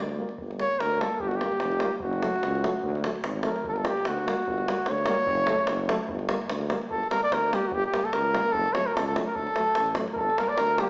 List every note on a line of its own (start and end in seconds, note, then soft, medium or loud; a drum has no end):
0.00 0.22 D2 medium
0.09 davul high soft
0.17 0.25 G3 medium
0.17 0.27 A#3 medium
0.29 davul high soft
0.38 0.63 G1 medium
0.38 davul low medium
0.51 davul high soft
0.58 0.67 G3 medium
0.58 0.69 A#3 soft
0.58 0.81 C#5 loud
0.58 davul high medium
0.71 davul high soft
0.80 1.03 D2 medium
0.80 1.03 A#4 loud
0.80 davul high medium
0.92 davul high soft
0.99 1.08 G3 medium
0.99 1.09 A#3 medium
0.99 1.22 A4 medium
0.99 davul high medium
1.20 1.44 G1 loud
1.20 1.30 G4 medium
1.20 davul low medium
1.28 1.37 F#4 medium
1.28 davul high soft
1.36 1.97 G4 loud
1.40 1.49 G3 medium
1.40 1.50 A#3 medium
1.40 davul high medium
1.52 davul high soft
1.60 1.85 F1 medium
1.60 davul high medium
1.72 davul high soft
1.80 1.90 G3 medium
1.80 1.89 A#3 medium
1.80 davul high medium
1.97 2.03 G4 medium
1.97 davul low loud
2.02 2.25 F#1 loud
2.02 3.04 F#4 medium
2.13 davul high soft
2.21 2.31 F#3 medium
2.21 2.30 A3 medium
2.21 davul high medium
2.36 davul high soft
2.43 2.66 C#2 medium
2.43 davul high medium
2.55 davul high soft
2.63 2.72 F#3 medium
2.63 2.71 A3 medium
2.63 davul high medium
2.83 3.07 D2 loud
2.83 davul low medium
2.95 davul high soft
3.03 3.13 F#3 medium
3.03 3.12 A3 medium
3.03 davul high medium
3.16 davul high soft
3.24 3.48 G#1 medium
3.24 davul high medium
3.36 davul high soft
3.43 3.55 F#3 medium
3.43 3.52 A3 medium
3.43 3.65 A#4 medium
3.43 davul high medium
3.56 davul high soft
3.64 3.89 G1 medium
3.64 3.75 A4 medium
3.64 davul low loud
3.73 3.79 A#4 medium
3.73 davul high soft
3.78 3.88 A4 medium
3.85 3.94 G3 medium
3.85 3.93 A#3 medium
3.85 4.10 G4 medium
3.85 davul high medium
3.97 davul high soft
4.05 4.30 D2 loud
4.05 4.91 F#4 medium
4.05 davul high medium
4.18 davul high soft
4.26 4.35 G3 medium
4.26 4.34 A#3 medium
4.26 davul high medium
4.47 4.69 G1 loud
4.47 davul low medium
4.58 davul high soft
4.67 4.76 G3 medium
4.67 4.76 A#3 medium
4.67 davul high medium
4.78 davul high soft
4.86 5.09 D2 loud
4.86 5.90 C#5 loud
4.86 davul high medium
4.98 davul high soft
5.06 5.15 G3 medium
5.06 5.16 A#3 medium
5.06 davul high medium
5.27 5.50 F#1 loud
5.27 davul low loud
5.38 davul high soft
5.47 5.56 F#3 medium
5.47 5.57 A3 medium
5.47 davul high medium
5.59 davul high soft
5.67 5.91 F#1 loud
5.67 davul high medium
5.80 davul high soft
5.89 5.98 F#3 medium
5.89 5.97 A3 medium
5.89 davul high medium
6.09 6.32 G1 medium
6.09 davul low loud
6.19 davul high soft
6.29 6.38 G3 medium
6.29 6.38 A#3 medium
6.29 davul high medium
6.41 davul high soft
6.50 6.73 D2 loud
6.50 davul high medium
6.61 davul high soft
6.70 6.78 G3 medium
6.70 6.78 A#3 medium
6.70 davul high medium
6.82 davul high soft
6.91 7.02 G1 medium
6.91 7.10 A4 loud
6.91 davul low medium
7.03 davul high soft
7.10 7.19 G3 medium
7.10 7.20 A#3 medium
7.10 7.21 A#4 loud
7.10 davul high medium
7.23 7.35 D5 loud
7.23 davul high soft
7.32 7.54 D2 medium
7.32 7.56 A#4 loud
7.32 davul high medium
7.51 7.61 G3 medium
7.51 7.59 A#3 medium
7.51 7.69 G4 medium
7.51 davul high medium
7.68 7.75 F#4 medium
7.72 7.83 G1 loud
7.72 7.85 G4 loud
7.72 davul low loud
7.84 8.06 G4 medium
7.84 davul high soft
7.93 8.02 G3 medium
7.93 8.01 A#3 medium
7.93 davul high medium
8.05 8.15 A4 medium
8.05 davul high soft
8.13 8.36 C#2 medium
8.13 8.54 A#4 loud
8.13 davul high medium
8.33 8.41 G3 medium
8.33 8.42 A#3 medium
8.33 davul high medium
8.52 8.65 F#1 loud
8.52 8.75 A4 loud
8.52 davul low medium
8.66 davul high soft
8.73 8.83 F#3 medium
8.73 8.83 A3 medium
8.73 8.88 C#5 loud
8.73 davul high medium
8.87 8.96 A#4 medium
8.87 davul high soft
8.95 9.18 C#2 loud
8.95 9.06 A4 medium
8.95 davul high medium
9.07 9.16 A4 medium
9.15 9.24 F#3 medium
9.15 9.23 A3 medium
9.15 davul high medium
9.26 9.36 A#4 medium
9.35 9.48 D2 loud
9.35 9.97 A4 loud
9.35 9.97 A4 medium
9.35 davul low medium
9.47 davul high soft
9.55 9.64 F#3 medium
9.55 9.64 A3 medium
9.55 davul high medium
9.67 davul high soft
9.75 10.00 A1 medium
9.75 davul high medium
9.86 davul high soft
9.95 10.05 F#3 medium
9.95 10.06 A3 medium
9.95 davul high medium
10.08 davul high soft
10.14 10.39 A4 loud
10.14 10.19 A#4 medium
10.14 10.21 A#4 medium
10.14 davul low loud
10.19 10.30 G1 medium
10.19 10.41 A4 medium
10.30 davul high soft
10.38 10.46 G3 medium
10.38 10.46 A#3 medium
10.38 10.50 A#4 medium
10.38 10.51 A#4 medium
10.38 davul high medium
10.48 10.59 D5 medium
10.48 davul high soft
10.57 10.81 D2 medium
10.57 10.82 A#4 medium
10.57 10.82 A#4 loud
10.57 davul high medium
10.78 10.88 G3 medium
10.78 10.89 A#3 medium
10.78 10.89 G4 medium
10.78 10.90 G4 medium
10.78 davul high medium